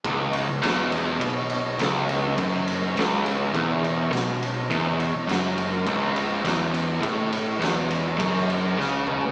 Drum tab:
RD |x-x-x-x-x-x-x-x-|x-x-x-x-x-x-x-x-|x-x-x-x-x-x-x-x-|x-x-x-x-x-x-----|
SD |----o-------o---|----o-------o---|----o-------o---|----o----o--o---|
T2 |----------------|----------------|----------------|--------------o-|
FT |----------------|----------------|----------------|---------------o|
BD |o-------o-------|o-------o-------|o-------o-------|o-------o-------|